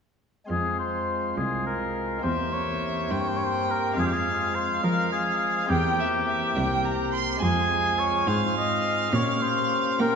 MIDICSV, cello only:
0, 0, Header, 1, 2, 480
1, 0, Start_track
1, 0, Key_signature, -4, "minor"
1, 0, Tempo, 576369
1, 421, Time_signature, 12, 3, 24, 8
1, 8456, End_track
2, 0, Start_track
2, 0, Title_t, "Cello"
2, 0, Program_c, 0, 42
2, 415, Note_on_c, 0, 41, 52
2, 1111, Note_off_c, 0, 41, 0
2, 1144, Note_on_c, 0, 36, 50
2, 1832, Note_off_c, 0, 36, 0
2, 1864, Note_on_c, 0, 40, 55
2, 2554, Note_off_c, 0, 40, 0
2, 2585, Note_on_c, 0, 43, 57
2, 3276, Note_off_c, 0, 43, 0
2, 3306, Note_on_c, 0, 41, 54
2, 3994, Note_off_c, 0, 41, 0
2, 4026, Note_on_c, 0, 53, 59
2, 4715, Note_off_c, 0, 53, 0
2, 4748, Note_on_c, 0, 40, 65
2, 5434, Note_off_c, 0, 40, 0
2, 5466, Note_on_c, 0, 36, 64
2, 6149, Note_off_c, 0, 36, 0
2, 6182, Note_on_c, 0, 41, 64
2, 6864, Note_off_c, 0, 41, 0
2, 6888, Note_on_c, 0, 44, 61
2, 7576, Note_off_c, 0, 44, 0
2, 7603, Note_on_c, 0, 46, 68
2, 8295, Note_off_c, 0, 46, 0
2, 8329, Note_on_c, 0, 58, 59
2, 8456, Note_off_c, 0, 58, 0
2, 8456, End_track
0, 0, End_of_file